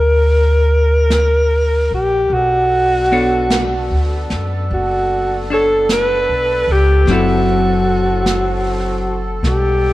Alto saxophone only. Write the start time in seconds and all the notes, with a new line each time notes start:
Already playing: A#4
1.94 G4
2.33 F#4
4.74 F#4
5.54 A4
5.92 B4
6.72 G4
7.11 F#4
9.47 G4